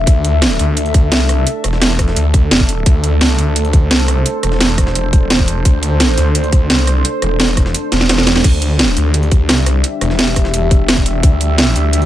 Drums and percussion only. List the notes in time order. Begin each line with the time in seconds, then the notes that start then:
0.07 kick, closed hi-hat
0.25 closed hi-hat
0.42 snare, closed hi-hat
0.51 snare
0.59 closed hi-hat
0.77 closed hi-hat
0.86 closed hi-hat
0.94 kick, closed hi-hat
1.12 snare, closed hi-hat
1.21 closed hi-hat
1.29 cross-stick, closed hi-hat
1.47 closed hi-hat
1.64 cross-stick, closed hi-hat
1.73 snare
1.82 snare, closed hi-hat
1.90 snare
1.99 kick, cross-stick, closed hi-hat
2.08 snare
2.16 closed hi-hat
2.34 kick, closed hi-hat
2.51 snare, closed hi-hat
2.60 kick, closed hi-hat
2.69 closed hi-hat
2.86 kick, closed hi-hat
3.04 closed hi-hat
3.21 snare, closed hi-hat
3.30 snare
3.38 closed hi-hat
3.56 closed hi-hat
3.65 closed hi-hat
3.73 kick, closed hi-hat
3.91 snare, closed hi-hat
4.00 closed hi-hat
4.08 cross-stick, closed hi-hat
4.26 closed hi-hat
4.43 cross-stick, closed hi-hat
4.52 snare
4.61 snare, closed hi-hat
4.69 snare
4.78 kick, cross-stick, closed hi-hat
4.87 snare
4.95 closed hi-hat
5.13 kick, closed hi-hat
5.30 snare, closed hi-hat
5.39 kick
5.48 closed hi-hat
5.65 kick, closed hi-hat
5.83 closed hi-hat
6.00 snare, closed hi-hat
6.09 snare
6.18 snare, closed hi-hat
6.35 closed hi-hat
6.44 closed hi-hat
6.52 kick, closed hi-hat
6.70 snare, closed hi-hat
6.79 closed hi-hat
6.87 cross-stick, closed hi-hat
7.05 closed hi-hat
7.22 cross-stick, closed hi-hat
7.40 snare, closed hi-hat
7.48 snare
7.57 kick, cross-stick, closed hi-hat
7.66 snare
7.75 closed hi-hat
7.92 snare, closed hi-hat
8.01 snare
8.09 snare, closed hi-hat
8.18 snare
8.27 snare, closed hi-hat
8.36 snare
8.44 kick, closed hi-hat, crash
8.62 closed hi-hat
8.79 snare, closed hi-hat
8.88 snare
8.97 closed hi-hat
9.14 closed hi-hat
9.23 closed hi-hat
9.31 kick, closed hi-hat
9.49 snare, closed hi-hat
9.58 closed hi-hat
9.66 cross-stick, closed hi-hat
9.84 closed hi-hat
10.01 cross-stick, closed hi-hat
10.10 snare
10.19 snare, closed hi-hat
10.28 snare
10.36 kick, cross-stick, closed hi-hat
10.45 snare
10.54 closed hi-hat
10.71 kick, closed hi-hat
10.88 snare, closed hi-hat
10.97 kick
11.06 closed hi-hat
11.23 kick, closed hi-hat
11.41 closed hi-hat
11.58 snare, closed hi-hat
11.67 snare
11.76 closed hi-hat
11.93 closed hi-hat
12.02 closed hi-hat